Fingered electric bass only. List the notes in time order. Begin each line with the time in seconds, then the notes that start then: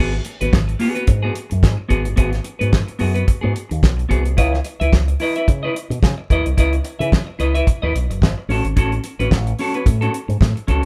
0.00 G#1
0.41 G#1
0.53 G#1
1.08 G#2
1.52 F#2
1.63 G#2
1.91 G#1
2.06 G1
2.18 G#1
2.61 G#2
3.01 F#2
3.28 muted fingered electric bass stroke
3.44 G#2
3.71 D#2
3.83 B1
4.11 C2
4.38 C#2
4.81 C#2
4.92 C#2
5.48 C#3
5.90 B2
6.02 C#3
6.30 D#2
6.46 C2
6.58 C#2
7.00 C#3
7.39 C#2
7.83 D#2
7.95 B1
8.09 F#1
8.22 G#1
8.48 A1
8.64 G#1
8.77 A1
9.19 A1
9.32 A1
9.86 A2
10.28 G#2
10.41 A2
10.69 C#2